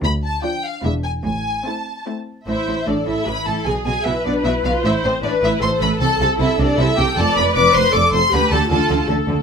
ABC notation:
X:1
M:3/4
L:1/8
Q:1/4=153
K:Am
V:1 name="Violin section"
b a g f e ^g | ^g2 a2 z2 | e2 d e b a | ^g g e d e f |
e c d e c' b | a a e d e g | a b d' c' d' c' | b a a2 z2 |]
V:2 name="Violin section"
z2 [Fd]2 [FB]2 | z2 [Ec]2 [Ec]2 | E2 D E B A | ^G G E D E F |
E C D E c B | A A E D E G | A B d c d c | B A A2 z2 |]
V:3 name="Viola section"
z2 [F,D]2 [^G,D]2 | z2 [A,C]2 [A,C]2 | c2 A2 E2 | ^G2 B4 |
c2 B2 A2- | A6 | d2 B2 A2 | G2 F2 A2 |]
V:4 name="Cello section" clef=bass
D,,2 z2 E,,2 | A,,2 z4 | A,, A,, A,, A,, A,, A,, | B,, B,, B,, B,, B,, B,, |
A,, A,, A,, A,, A,, A,, | C, C, C, C, C, C, | F,, F,, F,, F,, F,, F,, | D, D, D, D, D, D, |]
V:5 name="Double bass section" clef=bass
D,,2 z2 E,,,2 | A,,,2 z4 | A,,, A,,, A,,, A,,, A,,, A,,, | B,,, B,,, B,,, B,,, B,,, B,,, |
A,,, A,,, A,,, A,,, A,,, A,,, | C,, C,, C,, C,, C,, C,, | F,,, F,,, F,,, F,,, F,,, F,,, | D,, D,, D,, D,, D,, D,, |]